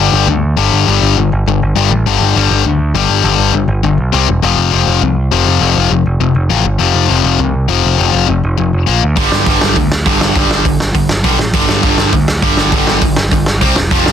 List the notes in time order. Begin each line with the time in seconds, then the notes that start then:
Already playing: G1 G2
0.00 D3 G3
0.12 G1
0.27 D2 G2 D3
0.57 G1 G2 D3 G3
0.72 G1
0.87 G1 G2 D3 G3
1.02 G1
1.17 G1 G2 D3
1.32 G1
1.46 G1 G2 D3
1.62 G1
1.76 G1 G2 D3 G3
1.91 A1
2.06 G1 G2 D3 G3
2.21 G1
2.36 G1 G2 D3 G3
2.51 G1
2.65 D2 G2 D3
2.94 G1 G2 D3 G3
3.09 G1
3.23 G1 G2 D3 G3
3.38 G1
3.53 G1 G2 D3
3.68 G1
3.83 G1 G2 D3
3.98 B1
4.12 C2 C3 G3 C4
4.28 E1
4.42 F1 F2 C3 F3
4.57 F1
4.71 F1 F2 C3 F3
4.87 F1
5.01 C2 F2 C3
5.32 F1 F2 C3 F3
5.47 F1
5.60 F1 F2 C3 F3
5.76 F1
5.90 F1 F2 C3
6.06 F1
6.20 F1 F2 C3
6.35 F1
6.50 A1 F2 C3 F3
6.65 G1
6.79 F1 F2 C3 F3
6.94 F1
7.09 F1 F2 C3 F3
7.24 F1
7.39 C2 F2 C3
7.68 F1 F2 C3 F3
7.85 F1
7.97 F1 F2 C3 F3
8.13 F1
8.27 F1 F2 C3
8.44 F1
8.58 F1 F2 C3
8.73 F1
8.87 A#1 A#2 F3 A#3
9.03 D2
9.16 G1 G2 D3 G3, kick, open hi-hat
9.32 G1, snare
9.46 G1 G2 D3 G3, kick, open hi-hat
9.61 G1, snare
9.76 D2 G2 D3, kick, open hi-hat
9.92 snare
10.06 G1 G2 D3 G3, kick, open hi-hat
10.21 G1, snare
10.36 G1 G2 D3 G3, kick, open hi-hat
10.50 G1, snare
10.65 G1 G2 D3, kick, open hi-hat
10.80 G1, snare
10.94 G1 G2 D3, kick, open hi-hat
11.09 G1, snare
11.24 B1 G2 D3 G3, kick, open hi-hat
11.39 A1, snare
11.54 G1 G2 D3 G3, kick, open hi-hat
11.69 G1, snare
11.83 G1 G2 D3 G3, kick, open hi-hat
11.98 G1, snare
12.13 D2 G2 D3, kick, open hi-hat
12.28 snare
12.42 G1 G2 D3 G3, kick, open hi-hat
12.57 G1, snare
12.72 G1 G2 D3 G3, kick, open hi-hat
12.87 G1, snare
13.01 G1 G2 D3, kick, open hi-hat
13.16 G1, snare
13.31 G1 G2 D3, kick, open hi-hat
13.46 G1, snare
13.61 C2 C3 G3 C4, kick, open hi-hat
13.76 E1, snare
13.91 F1 F2 C3 F3, kick, open hi-hat
14.06 F1, snare